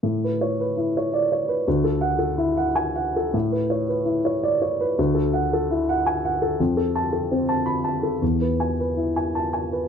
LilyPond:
\new Staff \with { instrumentName = "Upright piano" } { \time 3/4 \key a \major \tempo 4 = 110 << { r2 d''8 r8 | r2 gis''8 r8 | r2 d''8 r8 | r2 gis''8 r8 |
r2 b''8 r8 | r2 a''8 r8 | } \\ { \tuplet 3/2 { a,8 b'8 cis''8 b'8 e'8 cis''8~ cis''8 cis''8 b'8 } | \tuplet 3/2 { d,8 a'8 fis''8 a'8 e'8 fis''8~ fis''8 fis''8 a'8 } | \tuplet 3/2 { a,8 b'8 cis''8 b'8 e'8 cis''8~ cis''8 cis''8 b'8 } | \tuplet 3/2 { d,8 a'8 fis''8 a'8 e'8 fis''8~ fis''8 fis''8 a'8 } |
\tuplet 3/2 { f,8 a'8 a''8 a'8 c'8 a''8~ a''8 a''8 a'8 } | \tuplet 3/2 { e,8 b'8 gis''8 b'8 e'8 gis''8~ gis''8 gis''8 b'8 } | } >> }